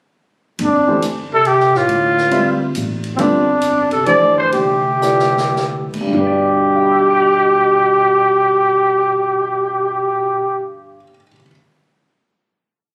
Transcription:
0.59 1.85 G1 medium
0.59 1.00 F2 medium
0.59 ride soft
0.63 1.02 D4 medium
0.88 1.01 E3 medium
0.88 1.01 A3 medium
0.88 1.01 D4 medium
0.88 1.01 G4 soft
0.88 1.01 C5 medium
1.02 hi-hat pedal medium
1.02 ride soft
1.32 1.47 C3 medium
1.32 1.48 A4 medium
1.45 1.76 C3 medium
1.45 1.78 G4 medium
1.45 ride soft
1.60 snare soft
1.75 2.61 A2 medium
1.75 2.62 F4 medium
1.75 snare soft
1.88 2.71 D2 medium
1.88 ride medium
2.18 snare soft
2.31 2.57 G3 medium
2.31 2.57 C4 soft
2.31 2.58 F4 medium
2.31 2.58 B4 medium
2.31 2.58 E5 medium
2.31 ride soft
2.75 3.16 A1 medium
2.75 hi-hat pedal soft
2.75 ride medium
3.04 ride soft
3.14 3.19 E2 soft
3.14 3.89 F2 medium
3.14 3.44 D3 medium
3.14 3.22 C4 medium
3.18 4.49 G1 medium
3.18 3.44 G3 medium
3.18 3.44 C4 medium
3.18 3.91 D4 medium
3.18 3.44 F4 medium
3.18 3.44 B4 medium
3.18 ride medium
3.62 hi-hat pedal soft
3.62 ride medium
3.90 4.05 C3 medium
3.90 4.06 A4 medium
3.90 ride soft
4.06 4.79 E3 medium
4.06 4.34 F3 medium
4.06 4.79 A3 medium
4.06 4.79 D4 medium
4.06 4.79 G4 medium
4.06 4.79 C5 medium
4.06 4.35 D5 medium
4.06 ride medium
4.36 4.50 E3 medium
4.36 4.52 C5 medium
4.50 5.90 D2 medium
4.50 5.88 C3 medium
4.50 5.89 G4 medium
4.50 ride medium
5.02 5.85 F3 medium
5.02 5.85 B3 soft
5.02 5.86 E4 soft
5.02 5.86 A4 soft
5.02 5.86 D5 medium
5.02 snare soft
5.02 hi-hat pedal medium
5.19 snare soft
5.37 snare medium
5.56 snare soft
5.94 6.12 D2 medium
5.94 kick medium
5.94 crash medium
6.01 10.95 G2 medium
6.07 11.01 G3 medium
6.13 11.03 G1 medium
6.13 10.58 B2 medium
6.13 11.08 D4 medium
6.13 10.60 G4 medium
6.20 11.14 B4 medium
6.26 11.21 D5 medium
6.76 11.28 F5 soft
6.83 11.32 B5 soft
6.91 11.36 E6 soft
7.01 11.41 G6 soft
7.10 11.46 D7 soft
7.22 11.51 F7 soft

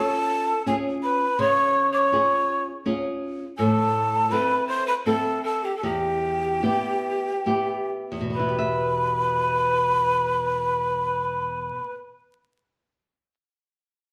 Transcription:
0.00 0.52 C#4 medium
0.00 0.52 F4 soft
0.00 0.63 A4 medium
0.00 0.63 A5 loud
0.66 1.25 C#4 medium
0.66 1.25 F4 medium
0.66 1.25 G#4 medium
0.66 0.75 G#4 medium
0.66 0.75 G#5 medium
1.03 1.42 B4 medium
1.03 1.41 B5 medium
1.39 2.10 C#3 medium
1.39 1.92 C#5 medium
1.39 1.93 C#6 loud
1.92 2.62 C#5 medium
1.92 1.99 D6 medium
1.98 2.63 C#6 medium
2.12 2.71 C#4 medium
2.12 2.71 F4 soft
2.12 2.71 G#4 medium
2.86 3.44 C#4 medium
2.86 3.44 F4 medium
2.86 3.44 G#4 medium
3.58 4.30 A2 medium
3.58 4.32 A4 medium
3.58 4.33 A5 loud
4.31 4.92 C4 medium
4.31 4.92 E4 soft
4.31 4.92 A4 medium
4.31 4.67 B4 medium
4.31 4.68 B5 loud
4.67 4.85 C5 medium
4.67 4.86 C6 loud
4.87 4.93 B4 medium
4.87 4.94 B5 loud
5.06 5.68 C4 medium
5.06 5.68 E4 medium
5.06 5.42 A4 medium
5.06 5.68 A4 medium
5.06 5.42 A5 loud
5.44 5.65 A4 medium
5.44 5.66 A5 medium
5.64 5.76 G4 medium
5.64 5.76 G5 medium
5.76 5.85 A4 medium
5.76 5.86 A5 medium
5.83 6.60 E2 medium
5.83 7.90 G4 medium
5.83 7.90 G5 loud
6.63 7.30 B3 medium
6.63 7.30 E4 medium
6.63 7.30 G4 medium
7.46 8.17 B3 medium
7.46 8.17 E4 medium
7.46 8.17 G4 medium
8.12 11.70 E2 medium
8.21 11.79 B2 medium
8.30 11.89 B3 medium
8.30 11.92 B5 medium
8.35 11.93 B4 medium
8.39 8.58 E4 medium
8.49 12.07 G4 medium
8.59 12.17 E5 medium

